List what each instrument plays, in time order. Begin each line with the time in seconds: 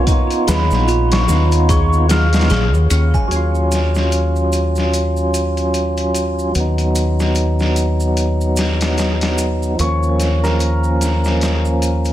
Already playing: synth texture C#4 C#5, hammered dulcimer A#4 C#5
0.03 tonewheel organ B3, music box B4, kick, closed hi-hat
0.08 tonewheel organ D#4 F4, maracas
0.30 closed hi-hat, maracas
0.47 fingered electric bass D#2, music box G#4, hammered dulcimer B4, snare, closed hi-hat, maracas
0.71 fingered electric bass A#1, snare, maracas
0.88 music box F4, closed hi-hat, maracas
1.11 hammered dulcimer C#5, snare, closed hi-hat, maracas
1.27 fingered electric bass D#2, tonewheel organ B3 D#4 F4, music box B4, snare, maracas
1.52 closed hi-hat, maracas
1.69 music box G#4, hammered dulcimer C#5, kick, closed hi-hat, maracas
1.93 maracas
2.09 tonewheel organ B3 D#4 F4, music box G#4, hammered dulcimer F5, snare, closed hi-hat, maracas
2.32 tonewheel organ B3 D#4, snare, closed hi-hat, maracas
2.36 tonewheel organ F4
2.41 snare, closed hi-hat
2.50 fingered electric bass A#1, music box G#4, snare, closed hi-hat, maracas
2.73 fingered electric bass D#2, maracas
2.90 fingered electric bass D#2, music box C#4, closed hi-hat, maracas
3.14 music box G#5, kick, maracas
3.28 fingered electric bass D#2, tonewheel organ F#3, closed hi-hat, maracas
3.32 tonewheel organ C#4
3.36 tonewheel organ F4
3.55 maracas
3.72 snare, closed hi-hat, maracas
3.95 snare, maracas
4.12 closed hi-hat, maracas
4.36 maracas
4.53 closed hi-hat, maracas
4.75 snare, maracas
4.94 closed hi-hat, maracas
5.17 maracas
5.34 closed hi-hat, maracas
5.57 closed hi-hat, maracas
5.74 closed hi-hat, maracas
5.97 closed hi-hat, maracas
6.14 closed hi-hat, maracas
6.39 maracas
6.52 fingered electric bass D#2, tonewheel organ F#3 B3, closed hi-hat, maracas
6.60 tonewheel organ D#4
6.78 closed hi-hat, maracas
6.95 closed hi-hat, maracas
7.19 snare, maracas
7.35 closed hi-hat, maracas
7.59 snare, maracas
7.76 closed hi-hat, maracas
8.00 maracas
8.17 closed hi-hat, maracas
8.41 maracas
8.56 snare, closed hi-hat, maracas
8.81 snare, closed hi-hat, maracas
8.98 snare, closed hi-hat, maracas
9.21 snare, closed hi-hat, maracas
9.38 closed hi-hat, maracas
9.63 maracas
9.75 fingered electric bass D#2, tonewheel organ F3, closed hi-hat, maracas
9.80 tonewheel organ A#3, hammered dulcimer C#5
9.84 tonewheel organ C#4
10.03 maracas
10.20 snare, closed hi-hat, maracas
10.44 hammered dulcimer A#4, snare, maracas
10.60 closed hi-hat, maracas
10.84 maracas
11.01 snare, closed hi-hat, maracas
11.24 snare, maracas
11.41 snare, closed hi-hat, maracas
11.65 maracas
11.82 closed hi-hat, maracas
12.05 closed hi-hat, maracas